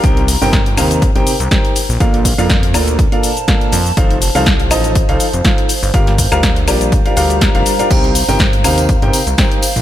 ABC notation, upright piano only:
X:1
M:4/4
L:1/16
Q:"Swing 16ths" 1/4=122
K:Cdor
V:1 name="Upright piano"
[C,EGBcg] z2 [C,EGBcg] z2 [C,EGBcf]2 z [C,EGBcg] z2 [EGBcg]2 z2 | [B,,DFABf] z2 [B,,DFABf] z2 [B,,DFABd]2 z [B,,DFABf] z2 [B,,DFABf]2 z2 | [F,EFAcf] z2 [F,EFAcf] z2 [F,EFAce]2 z [F,EFAcf] z2 [EFAcf]2 z2 | [G,DFGBf] z2 [G,DFGBf] z2 [G,DFGBd]2 z [G,DFGBf] [G,DFGBf]3 [G,DFGBf] z [DFGBf] |
[C,EGBcg] z2 [C,EGBcg] z2 [C,EGBcf]2 z [C,EGBcg] z2 [EGBcg]2 z2 |]